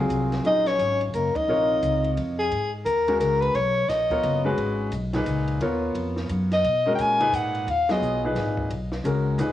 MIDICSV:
0, 0, Header, 1, 7, 480
1, 0, Start_track
1, 0, Tempo, 343643
1, 626, Time_signature, 3, 2, 24, 8
1, 13300, End_track
2, 0, Start_track
2, 0, Title_t, "Soprano saxophone"
2, 0, Program_c, 0, 64
2, 656, Note_on_c, 0, 75, 103
2, 933, Note_on_c, 0, 73, 108
2, 954, Note_off_c, 0, 75, 0
2, 1412, Note_off_c, 0, 73, 0
2, 1600, Note_on_c, 0, 70, 73
2, 1902, Note_on_c, 0, 75, 91
2, 1923, Note_off_c, 0, 70, 0
2, 3040, Note_off_c, 0, 75, 0
2, 3332, Note_on_c, 0, 68, 78
2, 3781, Note_off_c, 0, 68, 0
2, 3981, Note_on_c, 0, 70, 81
2, 4435, Note_off_c, 0, 70, 0
2, 4469, Note_on_c, 0, 70, 82
2, 4763, Note_on_c, 0, 71, 97
2, 4784, Note_off_c, 0, 70, 0
2, 4960, Note_on_c, 0, 73, 87
2, 4981, Note_off_c, 0, 71, 0
2, 5428, Note_on_c, 0, 75, 87
2, 5449, Note_off_c, 0, 73, 0
2, 6213, Note_off_c, 0, 75, 0
2, 9117, Note_on_c, 0, 75, 93
2, 9651, Note_off_c, 0, 75, 0
2, 9707, Note_on_c, 0, 79, 73
2, 9786, Note_on_c, 0, 80, 95
2, 9807, Note_off_c, 0, 79, 0
2, 10270, Note_on_c, 0, 78, 79
2, 10291, Note_off_c, 0, 80, 0
2, 10758, Note_on_c, 0, 77, 80
2, 10779, Note_off_c, 0, 78, 0
2, 11056, Note_on_c, 0, 75, 80
2, 11077, Note_off_c, 0, 77, 0
2, 11512, Note_off_c, 0, 75, 0
2, 13300, End_track
3, 0, Start_track
3, 0, Title_t, "Grand piano"
3, 0, Program_c, 1, 0
3, 0, Note_on_c, 1, 54, 60
3, 0, Note_on_c, 1, 60, 57
3, 0, Note_on_c, 1, 65, 57
3, 0, Note_on_c, 1, 68, 68
3, 590, Note_off_c, 1, 54, 0
3, 594, Note_off_c, 1, 60, 0
3, 597, Note_off_c, 1, 65, 0
3, 602, Note_off_c, 1, 68, 0
3, 621, Note_on_c, 1, 54, 46
3, 633, Note_on_c, 1, 61, 47
3, 638, Note_on_c, 1, 65, 45
3, 640, Note_on_c, 1, 68, 60
3, 1961, Note_off_c, 1, 54, 0
3, 1967, Note_off_c, 1, 61, 0
3, 1969, Note_off_c, 1, 65, 0
3, 1970, Note_off_c, 1, 68, 0
3, 2072, Note_on_c, 1, 48, 55
3, 2080, Note_on_c, 1, 65, 58
3, 2082, Note_on_c, 1, 70, 53
3, 2090, Note_on_c, 1, 73, 65
3, 3407, Note_off_c, 1, 48, 0
3, 3412, Note_off_c, 1, 65, 0
3, 3413, Note_off_c, 1, 70, 0
3, 3417, Note_off_c, 1, 73, 0
3, 4292, Note_on_c, 1, 56, 67
3, 4301, Note_on_c, 1, 66, 64
3, 4303, Note_on_c, 1, 61, 68
3, 4310, Note_on_c, 1, 70, 77
3, 4919, Note_off_c, 1, 56, 0
3, 4923, Note_off_c, 1, 66, 0
3, 4924, Note_off_c, 1, 61, 0
3, 4928, Note_off_c, 1, 70, 0
3, 5731, Note_on_c, 1, 59, 56
3, 5743, Note_on_c, 1, 65, 53
3, 5744, Note_on_c, 1, 70, 54
3, 5753, Note_on_c, 1, 73, 64
3, 6184, Note_off_c, 1, 59, 0
3, 6190, Note_off_c, 1, 65, 0
3, 6191, Note_off_c, 1, 70, 0
3, 6195, Note_off_c, 1, 73, 0
3, 6208, Note_on_c, 1, 56, 74
3, 6211, Note_on_c, 1, 61, 62
3, 6218, Note_on_c, 1, 66, 62
3, 6224, Note_on_c, 1, 71, 82
3, 6836, Note_off_c, 1, 56, 0
3, 6838, Note_off_c, 1, 61, 0
3, 6841, Note_off_c, 1, 66, 0
3, 6844, Note_off_c, 1, 71, 0
3, 7182, Note_on_c, 1, 46, 74
3, 7190, Note_on_c, 1, 63, 65
3, 7198, Note_on_c, 1, 68, 61
3, 7205, Note_on_c, 1, 71, 76
3, 7803, Note_off_c, 1, 46, 0
3, 7806, Note_off_c, 1, 63, 0
3, 7810, Note_off_c, 1, 68, 0
3, 7814, Note_off_c, 1, 71, 0
3, 7841, Note_on_c, 1, 59, 66
3, 7847, Note_on_c, 1, 65, 58
3, 7851, Note_on_c, 1, 70, 61
3, 7856, Note_on_c, 1, 73, 69
3, 9169, Note_off_c, 1, 59, 0
3, 9172, Note_off_c, 1, 65, 0
3, 9174, Note_off_c, 1, 70, 0
3, 9177, Note_off_c, 1, 73, 0
3, 9574, Note_on_c, 1, 56, 64
3, 9587, Note_on_c, 1, 61, 63
3, 9588, Note_on_c, 1, 66, 57
3, 9595, Note_on_c, 1, 70, 70
3, 10023, Note_off_c, 1, 56, 0
3, 10030, Note_off_c, 1, 61, 0
3, 10030, Note_off_c, 1, 66, 0
3, 10034, Note_off_c, 1, 70, 0
3, 10060, Note_on_c, 1, 46, 79
3, 10064, Note_on_c, 1, 63, 64
3, 10068, Note_on_c, 1, 68, 69
3, 10081, Note_on_c, 1, 71, 76
3, 10679, Note_off_c, 1, 46, 0
3, 10681, Note_off_c, 1, 63, 0
3, 10683, Note_off_c, 1, 68, 0
3, 10689, Note_off_c, 1, 71, 0
3, 11024, Note_on_c, 1, 54, 60
3, 11027, Note_on_c, 1, 59, 50
3, 11038, Note_on_c, 1, 65, 55
3, 11044, Note_on_c, 1, 68, 67
3, 11466, Note_off_c, 1, 54, 0
3, 11468, Note_off_c, 1, 59, 0
3, 11473, Note_off_c, 1, 65, 0
3, 11476, Note_off_c, 1, 68, 0
3, 11513, Note_on_c, 1, 46, 62
3, 11519, Note_on_c, 1, 63, 56
3, 11524, Note_on_c, 1, 68, 59
3, 11533, Note_on_c, 1, 71, 68
3, 12124, Note_off_c, 1, 46, 0
3, 12126, Note_off_c, 1, 63, 0
3, 12129, Note_off_c, 1, 68, 0
3, 12133, Note_off_c, 1, 71, 0
3, 12629, Note_on_c, 1, 56, 57
3, 12636, Note_on_c, 1, 61, 53
3, 12641, Note_on_c, 1, 66, 52
3, 12648, Note_on_c, 1, 70, 64
3, 13089, Note_off_c, 1, 56, 0
3, 13092, Note_off_c, 1, 61, 0
3, 13094, Note_off_c, 1, 66, 0
3, 13098, Note_off_c, 1, 70, 0
3, 13111, Note_on_c, 1, 46, 69
3, 13117, Note_on_c, 1, 63, 58
3, 13127, Note_on_c, 1, 68, 55
3, 13128, Note_on_c, 1, 71, 72
3, 13300, Note_off_c, 1, 46, 0
3, 13300, Note_off_c, 1, 63, 0
3, 13300, Note_off_c, 1, 68, 0
3, 13300, Note_off_c, 1, 71, 0
3, 13300, End_track
4, 0, Start_track
4, 0, Title_t, "Trombone"
4, 0, Program_c, 2, 57
4, 643, Note_on_c, 2, 63, 90
4, 948, Note_on_c, 2, 61, 80
4, 969, Note_off_c, 2, 63, 0
4, 1419, Note_off_c, 2, 61, 0
4, 1589, Note_on_c, 2, 58, 64
4, 1888, Note_on_c, 2, 63, 74
4, 1909, Note_off_c, 2, 58, 0
4, 3033, Note_off_c, 2, 63, 0
4, 13300, End_track
5, 0, Start_track
5, 0, Title_t, "Upright bass"
5, 0, Program_c, 3, 32
5, 129, Note_on_c, 3, 36, 85
5, 603, Note_off_c, 3, 36, 0
5, 1102, Note_on_c, 3, 32, 90
5, 1572, Note_off_c, 3, 32, 0
5, 1587, Note_on_c, 3, 30, 85
5, 1868, Note_off_c, 3, 30, 0
5, 2067, Note_on_c, 3, 34, 81
5, 2536, Note_off_c, 3, 34, 0
5, 2546, Note_on_c, 3, 37, 82
5, 3016, Note_off_c, 3, 37, 0
5, 3028, Note_on_c, 3, 41, 90
5, 3498, Note_off_c, 3, 41, 0
5, 3511, Note_on_c, 3, 44, 74
5, 3973, Note_off_c, 3, 44, 0
5, 3982, Note_on_c, 3, 39, 88
5, 4455, Note_off_c, 3, 39, 0
5, 4469, Note_on_c, 3, 37, 88
5, 4939, Note_off_c, 3, 37, 0
5, 4951, Note_on_c, 3, 35, 85
5, 5417, Note_off_c, 3, 35, 0
5, 5425, Note_on_c, 3, 34, 88
5, 5896, Note_off_c, 3, 34, 0
5, 5914, Note_on_c, 3, 30, 95
5, 6381, Note_off_c, 3, 30, 0
5, 6390, Note_on_c, 3, 32, 81
5, 6859, Note_off_c, 3, 32, 0
5, 6870, Note_on_c, 3, 35, 97
5, 7339, Note_off_c, 3, 35, 0
5, 7351, Note_on_c, 3, 37, 83
5, 7819, Note_off_c, 3, 37, 0
5, 7828, Note_on_c, 3, 39, 84
5, 8297, Note_off_c, 3, 39, 0
5, 8305, Note_on_c, 3, 41, 93
5, 8775, Note_off_c, 3, 41, 0
5, 8788, Note_on_c, 3, 42, 98
5, 9256, Note_off_c, 3, 42, 0
5, 9272, Note_on_c, 3, 47, 83
5, 9738, Note_off_c, 3, 47, 0
5, 9758, Note_on_c, 3, 46, 96
5, 10221, Note_off_c, 3, 46, 0
5, 10228, Note_on_c, 3, 44, 90
5, 10695, Note_off_c, 3, 44, 0
5, 10707, Note_on_c, 3, 39, 83
5, 11174, Note_off_c, 3, 39, 0
5, 11187, Note_on_c, 3, 35, 87
5, 11653, Note_off_c, 3, 35, 0
5, 11666, Note_on_c, 3, 32, 97
5, 12132, Note_off_c, 3, 32, 0
5, 12151, Note_on_c, 3, 35, 77
5, 12614, Note_off_c, 3, 35, 0
5, 12624, Note_on_c, 3, 37, 93
5, 13090, Note_off_c, 3, 37, 0
5, 13099, Note_on_c, 3, 39, 97
5, 13300, Note_off_c, 3, 39, 0
5, 13300, End_track
6, 0, Start_track
6, 0, Title_t, "Muted upright bass strokes"
6, 1890, Note_on_c, 9, 29, 34
6, 2029, Note_off_c, 9, 29, 0
6, 13300, End_track
7, 0, Start_track
7, 0, Title_t, "Drums"
7, 140, Note_on_c, 9, 44, 48
7, 140, Note_on_c, 9, 51, 67
7, 280, Note_off_c, 9, 44, 0
7, 280, Note_off_c, 9, 51, 0
7, 448, Note_on_c, 9, 38, 33
7, 448, Note_on_c, 9, 51, 42
7, 587, Note_off_c, 9, 38, 0
7, 587, Note_off_c, 9, 51, 0
7, 623, Note_on_c, 9, 51, 54
7, 763, Note_off_c, 9, 51, 0
7, 923, Note_on_c, 9, 38, 46
7, 923, Note_on_c, 9, 51, 49
7, 1063, Note_off_c, 9, 38, 0
7, 1063, Note_off_c, 9, 51, 0
7, 1105, Note_on_c, 9, 44, 58
7, 1105, Note_on_c, 9, 51, 66
7, 1244, Note_off_c, 9, 44, 0
7, 1244, Note_off_c, 9, 51, 0
7, 1404, Note_on_c, 9, 51, 43
7, 1544, Note_off_c, 9, 51, 0
7, 1583, Note_on_c, 9, 44, 54
7, 1583, Note_on_c, 9, 51, 62
7, 1722, Note_off_c, 9, 44, 0
7, 1722, Note_off_c, 9, 51, 0
7, 1888, Note_on_c, 9, 36, 75
7, 1889, Note_on_c, 9, 51, 72
7, 2028, Note_off_c, 9, 36, 0
7, 2029, Note_off_c, 9, 51, 0
7, 2548, Note_on_c, 9, 44, 55
7, 2548, Note_on_c, 9, 51, 61
7, 2688, Note_off_c, 9, 44, 0
7, 2688, Note_off_c, 9, 51, 0
7, 2852, Note_on_c, 9, 51, 39
7, 2992, Note_off_c, 9, 51, 0
7, 3032, Note_on_c, 9, 51, 60
7, 3172, Note_off_c, 9, 51, 0
7, 3511, Note_on_c, 9, 51, 56
7, 3651, Note_off_c, 9, 51, 0
7, 3991, Note_on_c, 9, 44, 60
7, 3991, Note_on_c, 9, 51, 63
7, 4130, Note_off_c, 9, 44, 0
7, 4130, Note_off_c, 9, 51, 0
7, 4298, Note_on_c, 9, 51, 48
7, 4437, Note_off_c, 9, 51, 0
7, 4475, Note_on_c, 9, 44, 50
7, 4475, Note_on_c, 9, 51, 77
7, 4614, Note_off_c, 9, 44, 0
7, 4614, Note_off_c, 9, 51, 0
7, 4779, Note_on_c, 9, 51, 46
7, 4919, Note_off_c, 9, 51, 0
7, 4955, Note_on_c, 9, 51, 65
7, 5094, Note_off_c, 9, 51, 0
7, 5439, Note_on_c, 9, 38, 41
7, 5439, Note_on_c, 9, 44, 58
7, 5439, Note_on_c, 9, 51, 69
7, 5579, Note_off_c, 9, 38, 0
7, 5579, Note_off_c, 9, 44, 0
7, 5579, Note_off_c, 9, 51, 0
7, 5732, Note_on_c, 9, 36, 61
7, 5735, Note_on_c, 9, 51, 48
7, 5871, Note_off_c, 9, 36, 0
7, 5874, Note_off_c, 9, 51, 0
7, 5912, Note_on_c, 9, 51, 64
7, 6051, Note_off_c, 9, 51, 0
7, 6391, Note_on_c, 9, 51, 55
7, 6531, Note_off_c, 9, 51, 0
7, 6868, Note_on_c, 9, 44, 60
7, 6868, Note_on_c, 9, 51, 77
7, 7007, Note_off_c, 9, 44, 0
7, 7007, Note_off_c, 9, 51, 0
7, 7170, Note_on_c, 9, 38, 51
7, 7170, Note_on_c, 9, 51, 48
7, 7310, Note_off_c, 9, 38, 0
7, 7310, Note_off_c, 9, 51, 0
7, 7349, Note_on_c, 9, 44, 60
7, 7349, Note_on_c, 9, 51, 73
7, 7489, Note_off_c, 9, 44, 0
7, 7489, Note_off_c, 9, 51, 0
7, 7650, Note_on_c, 9, 51, 48
7, 7790, Note_off_c, 9, 51, 0
7, 7832, Note_on_c, 9, 51, 63
7, 7971, Note_off_c, 9, 51, 0
7, 8312, Note_on_c, 9, 51, 62
7, 8452, Note_off_c, 9, 51, 0
7, 8611, Note_on_c, 9, 38, 48
7, 8751, Note_off_c, 9, 38, 0
7, 8789, Note_on_c, 9, 44, 61
7, 8789, Note_on_c, 9, 51, 73
7, 8929, Note_off_c, 9, 44, 0
7, 8929, Note_off_c, 9, 51, 0
7, 9099, Note_on_c, 9, 38, 38
7, 9099, Note_on_c, 9, 51, 47
7, 9238, Note_off_c, 9, 38, 0
7, 9238, Note_off_c, 9, 51, 0
7, 9277, Note_on_c, 9, 51, 67
7, 9417, Note_off_c, 9, 51, 0
7, 9753, Note_on_c, 9, 44, 67
7, 9753, Note_on_c, 9, 51, 73
7, 9893, Note_off_c, 9, 44, 0
7, 9893, Note_off_c, 9, 51, 0
7, 10059, Note_on_c, 9, 51, 51
7, 10198, Note_off_c, 9, 51, 0
7, 10241, Note_on_c, 9, 44, 66
7, 10241, Note_on_c, 9, 51, 74
7, 10380, Note_off_c, 9, 44, 0
7, 10380, Note_off_c, 9, 51, 0
7, 10536, Note_on_c, 9, 51, 49
7, 10676, Note_off_c, 9, 51, 0
7, 10721, Note_on_c, 9, 51, 65
7, 10861, Note_off_c, 9, 51, 0
7, 11021, Note_on_c, 9, 38, 88
7, 11021, Note_on_c, 9, 51, 69
7, 11161, Note_off_c, 9, 38, 0
7, 11161, Note_off_c, 9, 51, 0
7, 11199, Note_on_c, 9, 44, 56
7, 11339, Note_off_c, 9, 44, 0
7, 11672, Note_on_c, 9, 38, 40
7, 11672, Note_on_c, 9, 51, 61
7, 11811, Note_off_c, 9, 38, 0
7, 11811, Note_off_c, 9, 51, 0
7, 11972, Note_on_c, 9, 36, 60
7, 12112, Note_off_c, 9, 36, 0
7, 12153, Note_on_c, 9, 51, 71
7, 12293, Note_off_c, 9, 51, 0
7, 12453, Note_on_c, 9, 38, 62
7, 12593, Note_off_c, 9, 38, 0
7, 12635, Note_on_c, 9, 44, 54
7, 12635, Note_on_c, 9, 51, 74
7, 12775, Note_off_c, 9, 44, 0
7, 12775, Note_off_c, 9, 51, 0
7, 13108, Note_on_c, 9, 44, 61
7, 13108, Note_on_c, 9, 51, 78
7, 13247, Note_off_c, 9, 44, 0
7, 13247, Note_off_c, 9, 51, 0
7, 13300, End_track
0, 0, End_of_file